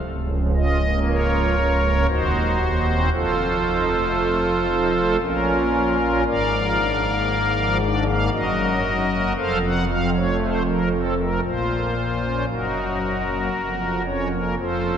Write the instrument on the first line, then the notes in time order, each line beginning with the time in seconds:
pipe organ
0.03 C#1 C#2
0.29 F3
0.56 F4 D#5
0.82 A#3
1.08 F4 A#4 C#5
1.33 F3
1.57 F4
1.83 A#3
2.08 D#1 D#2 D#4 F#4 C5
2.34 F#3
2.61 D#4
2.85 C4
3.12 F1 F2 F4 A4 C5
3.39 F3
3.66 D#4
3.91 A3
4.44 F3
4.69 D#4
4.96 A3
5.21 A#1 A#2 C#4 F4 A#4
5.47 A#3
5.74 F3
5.99 C#4
6.26 G#1 G#2 A#4 D5 F5
6.54 F3
6.79 D4
7.05 A#3
7.56 F3
7.81 D4 D5
8.08 A#3 F5
8.33 F#1 F#2 F#4 A#4 D#5
8.59 F#3
8.84 D#4
9.11 A#3
9.36 F1 F2 A4 C5 F5
9.64 F3 F#5
9.88 C4 F5
10.15 A3 C#5
10.42 C5
10.67 F3 A#4
10.92 C4 A4
11.19 A3 A#4
11.45 A#1 A#2 F4 C5
11.72 A#3
11.97 F3
12.23 C#4
12.48 F#1 F#2 D#4 F#4 A#4
12.75 F#3
13.00 D#4
13.26 A#3
13.51 F1 F2
13.78 F3
14.05 C#4 C#5
14.32 A#3 A#4
14.59 F1 F2 F4 A4 C5
14.85 F3